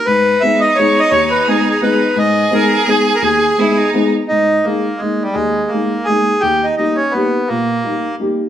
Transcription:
0.06 G#2 D#4 B4
0.41 G#3 B3 D#4 G#4 E5
0.60 D#5
0.75 G#3 B3 D#4 G#4 C#5
1.00 D#5
1.11 D#2 C#5
1.31 B4
1.48 G#3 B3 D#4 G#4
1.70 G#4
1.81 G#3 B3 D#4 G#4 B4
2.16 G#2 G#4 D#5
2.51 G#3 B3 D#4 G#4 A#4
2.87 G#3 B3 D#4 G#4
3.15 A#4
3.22 D#2 G#4
3.58 G#3 B3 D#4 E4 G#4
3.78 D#4
3.93 G#3 B3 D#4 G#4
4.28 G#2 D#4
4.64 G#3 A#3 D#4 G#4
4.97 G#3
5.01 G#3 A#3 D#4 G#4
5.22 G3
5.33 D#2 G#3
5.68 A#3
5.72 G#3 A#3 D#4 G#4
6.05 G#3 A#3 D#4 G#4
6.09 G#4
6.41 D#2 G4
6.64 D#4
6.77 G3 A#3 D#4 G4
6.96 C#4
7.11 G3 A#3 B3
7.16 D#4 G4
7.47 A#2 A#3
7.84 G3 A#3 D#4 G4
8.20 G3 A#3 D#4 G4

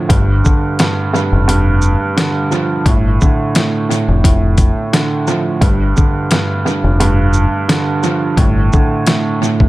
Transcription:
Already playing: A2 D3 F3
0.09 G1 G2, kick, closed hi-hat
0.44 D3, kick, shaker
0.79 G2, snare, closed hi-hat
1.13 G2, shaker
1.32 F1
1.48 G2, closed hi-hat
1.82 shaker
2.16 D3, snare, closed hi-hat
2.51 F3, shaker
2.86 G1 A2, kick, closed hi-hat
3.21 D3, kick, shaker
3.55 A2, snare, closed hi-hat
3.89 A2, closed hi-hat, shaker
4.08 F1
4.24 A2, kick, closed hi-hat
4.58 kick, closed hi-hat, shaker
4.93 D3, snare, closed hi-hat
5.27 F3, shaker
5.61 G1 G2, kick, closed hi-hat
5.96 D3, kick, shaker
6.31 G2, snare, closed hi-hat
6.65 G2, shaker
6.84 F1
7.00 G2, closed hi-hat
7.33 shaker
7.68 D3, snare, closed hi-hat
8.03 F3, shaker
8.37 G1 A2, kick, closed hi-hat
8.72 D3, kick, shaker
9.06 A2, snare, closed hi-hat
9.41 A2, shaker
9.60 F1, kick

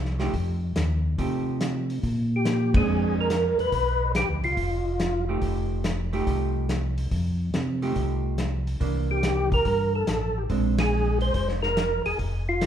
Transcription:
Already playing: C2
0.05 snare
0.19 F3 A3 D#4 G4, snare, open hi-hat
0.33 F2, kick, open hi-hat
0.76 D#2, snare, closed hi-hat
1.18 C3 F3 A3 D#4 G4, kick, open hi-hat
1.61 snare, closed hi-hat
1.90 open hi-hat
2.03 A#2, kick, open hi-hat
2.36 G4
2.45 snare, closed hi-hat
2.74 G#3 C4 D4 G#4, kick, ride
2.88 F2
3.21 A#4
3.30 snare, closed hi-hat
3.59 F2 B4, open hi-hat
3.72 B1, kick, open hi-hat
4.15 G4, snare, closed hi-hat
4.29 D2
4.43 C2 F4, open hi-hat
4.57 F1, kick, open hi-hat
5.00 snare, closed hi-hat
5.28 F3 A3 D#4 G4
5.42 F1, kick, open hi-hat
5.84 snare, closed hi-hat
6.13 F3 A3 D#4 G4, open hi-hat
6.27 C2, kick, open hi-hat
6.69 snare, closed hi-hat
6.98 open hi-hat
7.11 F2, kick, open hi-hat
7.54 C3, snare, closed hi-hat
7.82 F3 A3 D#4 G4, open hi-hat
7.96 C2, kick, open hi-hat
8.38 snare, closed hi-hat
8.67 open hi-hat
8.80 C2 E3 A#3 D4, kick, open hi-hat
9.11 G4
9.23 snare, closed hi-hat
9.52 A#4, kick, open hi-hat
9.65 G2 A#4, kick, open hi-hat
9.95 A4
10.07 A1, snare, closed hi-hat
10.38 G4
10.50 A#1 G#3 C4 D4, kick, open hi-hat
10.78 G#4, snare, ride
11.21 C5, open hi-hat
11.34 F1 C5, kick, open hi-hat
11.48 snare
11.62 A#4, snare
11.77 snare, closed hi-hat
12.06 F1 G#4, open hi-hat
12.19 F1, kick, open hi-hat
12.49 F4
12.61 snare, closed hi-hat

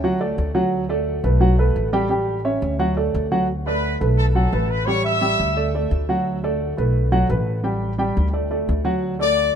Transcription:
Already playing: D2
0.04 F#3 F#4 F#5
0.20 A3 A4 D5
0.38 D2
0.55 F#3 F#4 F#5
0.89 A3 A4 D5
1.24 B1 A3 A4 B4
1.40 F#3 F#4 F#5
1.58 A3 A4 B4
1.76 A1
1.93 G3 G4 G5
2.10 G3 G4 G5
2.45 C#4 C#5 E5
2.62 D2
2.79 F#3 F#4 F#5
2.97 A3 A4 D5
3.14 D2
3.32 F#3 F#4 F#5
3.66 A3 A4 B4 D5 B5
4.01 B1 A3 A4 B4
4.18 A4 A5
4.34 F#3 F#4 A4 F#5 A5
4.52 A1 A3 A4 B4
4.69 B4 B5
4.86 G3 G4 C#5 G5 C#6
5.04 E5 E6
5.21 G3 G4 G5
5.40 D2
5.57 A3 A4 D5
5.75 A3 A4 D5
5.91 D2
6.09 F#3 F#4 F#5
6.44 A3 A4 D5
6.77 B1 A3 A4 B4
7.12 F#3 F#4 F#5
7.29 A1 A3 A4 B4
7.64 G3 G4 G5
7.98 G3 G4 G5
8.17 D2
8.33 A3 A4 D5
8.51 A3 A4 D5
8.69 D2
8.85 F#3 F#4 F#5
9.19 A3 A4 D5 D6

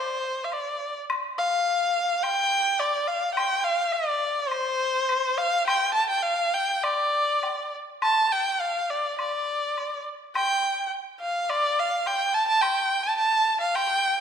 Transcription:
Already playing: C5
0.44 F5
0.52 D5, high woodblock
1.10 high woodblock
1.38 F5
2.23 G5, high woodblock
2.79 D5, high woodblock
3.07 F5
3.34 G5, high woodblock
3.64 F5
3.92 D5
4.48 C5, high woodblock
5.09 high woodblock
5.37 F5
5.67 G5, high woodblock
5.94 A5
6.10 G5
6.22 F5
6.53 G5
6.83 D5, high woodblock
7.43 high woodblock, low woodblock
8.02 A5, high woodblock
8.32 G5
8.60 F5
8.90 D5
9.19 D5, high woodblock
9.77 high woodblock
10.35 G5, high woodblock
11.21 F5
11.49 D5, high woodblock
11.79 F5
12.06 G5, high woodblock
12.34 A5
12.48 A5
12.61 G5, high woodblock
13.03 A5
13.17 A5
13.61 F5
13.75 G5, high woodblock

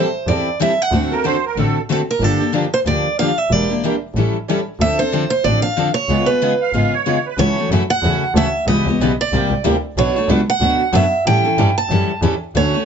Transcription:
Already playing: C5
0.27 E2 E3 G3 C4 E4 A4 D5
0.60 E3 G3 C4 E4 A4 E5
0.82 F#5
0.91 D2 D3 A3 C4 F#4 A4
1.12 C4 F#4 A4 A#4
1.24 D3 A3 C4 F#4 A4 C5
1.45 A#4
1.56 A1 D3 A3 C4 F#4 A4
1.89 D3 A3 C4 F#4 A4
2.11 A#4
2.20 G1 D3 F3 A#3 D4 G4
2.24 A4
2.40 A#3 D4 G4
2.52 D3 F3 A#3 D4 G4
2.74 C5
2.86 D2 D3 F3 A#3 D4 G4 D5
3.19 D3 F3 A#3 D4 G4 F5
3.38 E5
3.51 E1 E3 G3 A#3 D4 E4 G4 A#4 D5
3.70 A#3 D4 G4
3.84 E3 G3 A#3 D4 E4 G4 A#4
4.14 A1 E3 G3 C#4 E4 A4
4.49 E3 G3 C#4 E4 A4
4.79 D2 D3 F3 C4 D4 A4 E5
4.99 C4 D4 A4 C5
5.12 D3 F3 C4 D4 A4
5.30 C5
5.44 A1 D3 F3 C4 D4 A4 D5
5.62 F5
5.76 D3 F3 C4 D4 A4
5.94 C#5
6.09 C#2 C#3 G#3 B3 F4 G#4
6.26 B3 F4 G#4 B4
6.42 C#3 G#3 B3 F4 G#4
6.61 F5
6.72 G#1 C#3 G#3 B3 F4 G#4
6.94 C#5
7.06 C#3 G#3 B3 F4 G#4
7.26 B4
7.38 C#2 C#3 E3 F#3 A3 C#4 E4 F#4 A4 C#5
7.58 A3 C#4 F#4
7.69 F#2 C#3 E3 F#3 A3 C#4 E4 F#4 A4
7.90 F#5
8.02 E2 C#3 E3 F#3 A3 C#4 E4 F#4 A4
8.34 D2 C#3 E3 F#3 A3 C#4 E4 F#4 A4 E5
8.66 C#2 C#3 E3 G3 B3 C#4 E4 G4 B4 D#5
8.86 C#2 C#4 G4
8.90 B3
8.99 B1 C#3 E3 G3 B3 C#4 E4 G4 B4
9.21 D5
9.32 C2 C3 G3 A#3 E4 G4
9.50 C2
9.63 D2 C3 G3 A#3 E4 G4
9.97 B1 B2 F#3 A3 D4 F#4 B4 C#5
10.16 A3 D4 F#4
10.28 C#2 B2 F#3 A3 D4 F#4 B4
10.50 F#5
10.60 D2 B2 F#3 A3 D4 F#4 B4
10.93 F#2 B2 F#3 A3 D4 F#4 B4 E5
11.25 A2 E3 G3 C#4 E4 A4 G5
11.44 C#4 E4 A4
11.57 G2 E3 G3 C#4 E4 A4
11.78 A5
11.89 F#2 E3 G3 C#4 E4 A4
12.22 E2 E3 G3 C#4 E4 A4
12.55 D2 D3 F#3 A3 C#4 F#4 A4 C#5
12.74 A3 C#4 F#4

